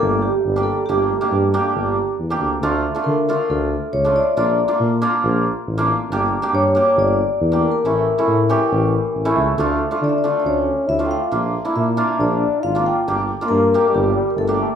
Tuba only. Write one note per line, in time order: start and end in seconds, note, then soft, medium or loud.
0.01 0.27 G1 loud
0.45 0.71 G1 medium
0.88 1.14 G1 medium
1.32 1.58 G2 medium
1.75 2.01 G1 medium
2.18 2.38 E2 medium
2.40 2.60 D2 medium
2.62 2.88 D2 medium
3.06 3.32 D3 medium
3.50 3.76 D2 medium
3.93 4.19 C#2 medium
4.37 4.63 A#1 medium
4.80 5.06 A#2 loud
5.24 5.50 A#1 loud
5.67 5.93 A1 medium
6.10 6.36 G1 medium
6.53 6.79 G2 medium
6.97 7.23 G1 medium
7.40 7.66 E2 medium
7.84 8.10 A1 medium
8.27 8.53 A2 medium
8.71 8.97 A1 loud
9.15 9.34 A1 medium
9.36 9.56 C#2 medium
9.58 9.84 D2 medium
10.02 10.28 D3 medium
10.45 10.71 D2 medium
10.89 11.14 D2 medium
11.32 11.58 A#1 medium
11.77 12.02 A#2 medium
12.19 12.45 A#1 loud
12.63 12.89 G#1 medium
13.07 13.32 G1 medium
13.50 13.76 G2 medium
13.94 14.19 G1 loud
14.36 14.62 G1 medium